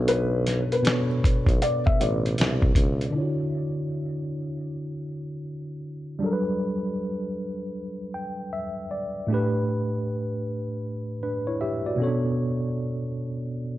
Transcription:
0.00 0.71 B1 medium
0.00 0.64 B2 medium
0.00 0.65 B3 medium
0.00 0.65 D4 medium
0.00 0.66 A4 medium
0.00 0.66 C#5 loud
0.08 0.67 B4 loud
0.08 closed hi-hat medium
0.47 snare soft
0.47 closed hi-hat medium
0.72 1.06 B4 medium
0.72 closed hi-hat soft
0.82 1.99 B2 medium
0.82 1.99 B3 medium
0.82 2.00 D4 medium
0.82 2.00 A4 medium
0.82 0.94 B4 medium
0.82 closed hi-hat medium
0.87 snare loud
0.92 2.04 C#5 medium
1.24 kick loud
1.24 closed hi-hat medium
1.46 1.59 B1 medium
1.46 kick medium
1.46 closed hi-hat soft
1.62 1.84 D5 medium
1.62 closed hi-hat medium
1.86 2.00 E5 medium
1.86 kick medium
2.00 2.34 A1 medium
2.00 2.35 D5 medium
2.00 closed hi-hat medium
2.26 closed hi-hat soft
2.38 2.73 C2 medium
2.38 snare loud
2.38 closed hi-hat medium
2.62 kick medium
2.75 3.10 C#2 medium
2.75 kick medium
2.75 closed hi-hat medium
3.01 closed hi-hat soft
3.11 6.16 D3 medium
3.11 6.17 D4 medium
3.11 6.18 E4 medium
3.16 3.24 F4 soft
3.16 6.20 C#5 medium
3.23 6.22 F#4 medium
6.19 9.26 F#3 medium
6.19 9.24 G3 medium
6.19 9.25 D4 medium
6.24 9.27 A4 medium
6.24 6.33 A#4 medium
6.33 9.31 B4 medium
8.14 8.50 G5 medium
8.53 8.89 E5 medium
8.91 9.27 D5 medium
9.27 11.94 A2 medium
9.27 11.94 A3 medium
9.27 11.19 D4 medium
9.32 11.20 G4 medium
9.32 11.21 B4 medium
11.23 11.46 D4 soft
11.23 11.46 B4 medium
11.47 11.61 E4 medium
11.47 11.60 C#5 medium
11.61 11.85 G4 medium
11.61 11.84 E5 medium
11.86 12.23 F#4 medium
11.86 12.23 D5 medium
11.96 13.78 B2 medium
11.96 13.78 B3 medium
11.96 12.08 C#4 medium
12.02 13.78 A4 medium
12.02 13.78 C#5 medium
12.07 13.78 D4 medium

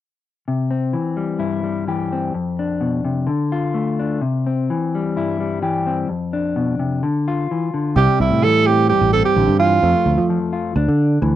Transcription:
0.48 0.94 C3 medium
0.71 2.11 C4 soft
0.93 1.86 E3 medium
1.17 1.63 G3 soft
1.39 2.31 G2 medium
1.39 1.87 E4 soft
1.64 2.34 G3 soft
1.88 2.32 E3 soft
1.88 2.32 G4 medium
2.12 2.33 C4 soft
2.34 3.26 F2 medium
2.59 3.26 D4 medium
2.81 3.04 B2 medium
3.04 3.28 C3 medium
3.27 4.21 D3 medium
3.52 4.20 F4 medium
3.74 4.19 A3 medium
3.99 4.20 D4 soft
4.21 4.69 C3 medium
4.47 5.85 C4 medium
4.70 5.61 E3 medium
4.95 5.39 G3 medium
5.16 6.07 G2 medium
5.16 5.62 E4 medium
5.40 6.10 G3 medium
5.62 6.07 E3 medium
5.62 6.07 G4 medium
5.87 6.07 C4 medium
6.09 7.00 F2 medium
6.33 7.01 D4 medium
6.56 6.79 B2 medium
6.79 7.03 C3 medium
7.03 7.50 D3 medium
7.28 7.94 F4 medium
7.51 7.73 E3 medium
7.74 7.97 D3 medium
7.96 8.06 C2 loud
7.96 8.43 C3 medium
7.96 9.83 G3 medium
7.96 8.18 G4 medium
8.20 8.30 C2 loud
8.20 8.45 E4 medium
8.31 8.91 A2 medium
8.43 9.36 E3 medium
8.43 8.68 A4 loud
8.66 9.13 C4 medium
8.66 8.89 G4 medium
8.90 9.81 G2 medium
8.90 9.11 G4 medium
9.01 9.21 A1 medium
9.13 9.81 C4 medium
9.13 9.24 A4 medium
9.25 9.57 G4 medium
9.36 9.46 A1 medium
9.36 9.59 D3 medium
9.48 9.78 G2 medium
9.59 9.83 E3 medium
9.59 10.25 F4 medium
9.83 9.93 F2 medium
9.83 10.73 F2 medium
9.83 10.73 A3 medium
10.06 10.16 D2 medium
10.18 10.38 F3 medium
10.30 10.73 F3 medium
10.53 10.73 F4 medium
10.76 10.86 D2 medium
10.76 11.36 D4 medium
10.76 muted clean electric guitar stroke medium
10.88 11.18 D3 medium
11.22 11.32 D2 medium
11.22 11.36 E3 medium

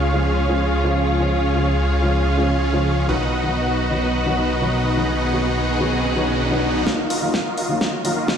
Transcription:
0.00 3.06 C#2 medium
0.00 3.05 C#3 medium
0.00 3.05 G#3 medium
0.00 3.06 C#4 medium
0.00 3.05 F4 medium
0.00 3.06 F4 medium
0.00 3.06 G#4 medium
0.00 3.06 C#5 medium
0.00 3.06 F5 medium
0.13 0.29 C#3 medium
0.13 0.30 F3 medium
0.13 0.30 G#3 medium
0.13 0.30 F4 medium
0.48 0.59 C#3 medium
0.48 0.59 F3 medium
0.48 0.59 G#3 medium
0.48 0.59 F4 medium
0.84 1.17 C#3 medium
0.84 1.17 F3 medium
0.84 1.17 G#3 medium
0.84 1.17 F4 medium
1.19 1.30 C#3 medium
1.19 1.30 F3 medium
1.19 1.30 G#3 medium
1.19 1.30 F4 medium
1.54 1.65 C#3 medium
1.54 1.65 F3 medium
1.54 1.65 G#3 medium
1.54 1.66 F4 medium
2.02 2.18 C#3 medium
2.02 2.19 F3 medium
2.02 2.19 G#3 medium
2.02 2.19 F4 medium
2.37 2.48 C#3 medium
2.37 2.48 F3 medium
2.37 2.48 G#3 medium
2.37 2.48 F4 medium
2.73 3.05 C#3 medium
2.73 3.06 F3 medium
2.73 3.06 G#3 medium
2.73 3.06 F4 medium
3.08 6.84 B1 medium
3.08 3.19 D#3 medium
3.08 6.83 D#3 medium
3.08 3.19 F#3 medium
3.08 3.19 B3 medium
3.08 6.83 B3 medium
3.08 6.84 D#4 medium
3.08 6.84 F#4 medium
3.08 4.96 F#4 medium
3.08 3.19 F#4 medium
3.08 6.84 B4 medium
3.08 6.84 D#5 medium
3.08 6.84 F#5 medium
3.08 riser medium
3.43 3.54 D#3 medium
3.43 3.54 F#3 medium
3.43 3.54 B3 medium
3.43 3.55 F#4 medium
3.91 4.07 D#3 medium
3.91 4.08 F#3 medium
3.91 4.08 B3 medium
3.91 4.08 F#4 medium
4.26 4.37 D#3 medium
4.26 4.37 F#3 medium
4.26 4.37 B3 medium
4.26 4.37 F#4 medium
4.62 4.94 D#3 medium
4.62 4.95 F#3 medium
4.62 4.95 B3 medium
4.62 4.95 F#4 medium
4.97 5.08 D#3 medium
4.97 5.08 F#3 medium
4.97 5.08 B3 medium
4.97 5.08 F#4 medium
4.97 6.85 G#4 medium
5.33 5.43 D#3 medium
5.33 5.43 F#3 medium
5.33 5.43 B3 medium
5.33 5.44 F#4 medium
5.80 5.96 D#3 medium
5.80 5.97 F#3 medium
5.80 5.97 B3 medium
5.80 5.97 F#4 medium
6.15 6.26 D#3 medium
6.15 6.26 F#3 medium
6.15 6.26 B3 medium
6.15 6.26 F#4 medium
6.51 6.84 D#3 medium
6.51 6.84 F#3 medium
6.51 6.84 B3 medium
6.51 6.84 F#4 medium
6.86 6.97 D#3 medium
6.86 8.38 D#3 medium
6.86 6.97 F#3 medium
6.86 8.38 F#3 medium
6.86 6.97 A#3 medium
6.86 8.38 F4 medium
6.86 7.07 F4 medium
6.86 6.97 F4 medium
6.86 7.07 F#4 medium
6.86 7.07 A#4 medium
6.86 7.07 D#5 medium
6.86 7.07 F5 medium
6.86 kick loud
6.86 snare soft
6.86 riser medium
7.10 7.20 F4 medium
7.10 7.20 F#4 medium
7.10 7.20 A#4 medium
7.10 7.20 D#5 medium
7.10 7.20 F5 loud
7.10 open hi-hat loud
7.22 7.32 D#3 medium
7.22 7.32 F#3 medium
7.22 7.32 A#3 medium
7.22 7.43 F4 medium
7.22 7.33 F4 medium
7.22 7.43 F#4 medium
7.22 7.43 A#4 medium
7.22 7.43 D#5 medium
7.22 7.43 F5 medium
7.34 kick loud
7.34 snare soft
7.46 7.56 F4 medium
7.46 7.56 F#4 medium
7.46 7.56 A#4 medium
7.46 7.56 D#5 medium
7.46 7.56 F5 loud
7.58 7.78 F4 medium
7.58 7.78 F#4 medium
7.58 7.78 A#4 medium
7.58 7.78 D#5 medium
7.58 7.78 F5 medium
7.58 open hi-hat medium
7.69 7.85 D#3 medium
7.69 7.86 F#3 medium
7.69 7.86 A#3 medium
7.69 7.86 F4 medium
7.81 7.98 F4 medium
7.81 7.98 F#4 medium
7.81 7.98 A#4 medium
7.81 7.98 D#5 medium
7.81 7.98 F5 medium
7.81 kick loud
7.81 snare soft
8.04 8.15 D#3 medium
8.04 8.15 F#3 medium
8.04 8.15 A#3 medium
8.04 8.15 F4 medium
8.04 8.15 F#4 medium
8.04 8.15 A#4 medium
8.04 8.15 D#5 medium
8.04 8.15 F5 medium
8.04 open hi-hat medium
8.17 8.37 F4 medium
8.17 8.37 F#4 medium
8.17 8.37 A#4 medium
8.17 8.37 D#5 medium
8.17 8.37 F5 medium
8.28 kick loud
8.28 snare soft

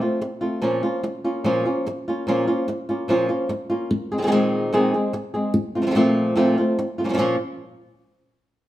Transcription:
0.01 0.20 A3 soft
0.01 0.21 C4 soft
0.01 0.21 F4 soft
0.21 muted nylon-string guitar stroke medium
0.41 0.62 A3 soft
0.41 0.62 C4 soft
0.41 0.61 F4 medium
0.62 0.82 A#2 medium
0.62 0.82 F3 medium
0.62 0.82 A#3 medium
0.62 0.83 C#4 medium
0.62 0.82 F4 medium
0.83 1.03 A#3 soft
0.83 1.03 C#4 medium
0.83 1.03 F4 medium
1.03 muted nylon-string guitar stroke medium
1.24 1.44 A#3 soft
1.24 1.44 C#4 medium
1.24 1.44 F4 medium
1.44 1.64 A#2 medium
1.44 1.65 F3 loud
1.44 1.65 A#3 medium
1.44 1.65 C#4 loud
1.44 1.64 F4 loud
1.65 1.86 A#3 soft
1.65 1.86 C#4 medium
1.65 1.85 F4 medium
1.86 muted nylon-string guitar stroke medium
2.08 2.27 A#3 soft
2.08 2.27 C#4 medium
2.08 2.27 F4 medium
2.27 2.47 A#2 medium
2.27 2.47 F3 medium
2.27 2.47 A#3 loud
2.27 2.47 C#4 medium
2.27 2.46 F4 loud
2.47 2.67 A#3 medium
2.47 2.67 C#4 medium
2.47 2.67 F4 medium
2.68 muted nylon-string guitar stroke medium
2.89 3.08 A#3 soft
2.89 3.09 C#4 soft
2.89 3.08 F4 medium
3.08 3.28 A#2 medium
3.08 3.29 F3 loud
3.08 3.29 A#3 medium
3.08 3.29 C#4 loud
3.08 3.28 F4 loud
3.29 3.49 A#3 soft
3.29 3.48 C#4 medium
3.29 3.49 F4 medium
3.49 muted nylon-string guitar stroke medium
3.70 3.91 A#3 soft
3.70 3.90 C#4 medium
3.70 3.90 F4 medium
3.91 muted nylon-string guitar stroke medium
4.12 4.17 G#3 soft
4.12 4.17 C4 medium
4.12 4.18 G#4 medium
4.18 4.21 D#3 medium
4.18 4.21 G#3 medium
4.18 4.22 C4 medium
4.18 4.23 G#4 medium
4.22 4.26 D#3 medium
4.22 4.26 G#3 medium
4.22 4.27 C4 medium
4.22 4.27 G#4 medium
4.27 4.31 D#3 medium
4.27 4.31 G#3 medium
4.27 4.31 C4 medium
4.27 4.31 G#4 medium
4.32 4.71 A#2 medium
4.32 4.72 D#3 medium
4.32 4.72 G#3 loud
4.32 4.72 C4 loud
4.32 4.72 G#4 loud
4.73 4.92 A#2 medium
4.73 4.93 D#3 medium
4.73 4.93 G#3 loud
4.73 4.93 C4 medium
4.73 4.93 G#4 loud
4.94 5.13 G#3 soft
4.94 5.13 C4 medium
4.94 5.13 G#4 medium
5.13 muted nylon-string guitar stroke medium
5.34 5.55 G#3 soft
5.34 5.54 C4 medium
5.34 5.54 G#4 medium
5.54 muted nylon-string guitar stroke medium
5.75 5.81 A3 soft
5.75 5.82 C4 medium
5.75 5.82 F4 medium
5.82 5.86 F3 medium
5.82 5.86 A3 medium
5.82 5.86 C4 medium
5.82 5.86 F4 medium
5.87 5.90 F3 medium
5.87 5.90 A3 medium
5.87 5.91 C4 medium
5.87 5.91 F4 medium
5.91 5.95 F3 medium
5.91 5.95 A3 medium
5.91 5.95 C4 medium
5.91 5.96 F4 medium
5.95 6.34 A#2 medium
5.95 6.35 F3 medium
5.95 6.36 A3 medium
5.95 6.36 C4 medium
5.95 6.36 F4 medium
6.36 6.56 A#2 medium
6.36 6.56 F3 loud
6.36 6.56 A3 medium
6.36 6.56 C4 medium
6.36 6.57 F4 loud
6.58 6.78 A3 soft
6.58 6.77 C4 medium
6.58 6.77 F4 medium
6.79 muted nylon-string guitar stroke medium
6.98 7.05 A3 soft
6.98 7.05 C4 soft
6.98 7.04 F4 medium
7.04 7.08 F3 medium
7.04 7.08 A#3 medium
7.04 7.08 C#4 medium
7.04 7.09 F4 medium
7.09 7.12 F3 medium
7.09 7.13 A#3 medium
7.09 7.13 C#4 medium
7.09 7.13 F4 medium
7.14 7.18 F3 medium
7.14 7.18 A#3 medium
7.14 7.18 C#4 medium
7.14 7.18 F4 medium
7.18 7.35 A#2 medium
7.18 7.35 F3 medium
7.18 7.35 A#3 medium
7.18 7.35 C#4 loud
7.18 7.35 F4 loud

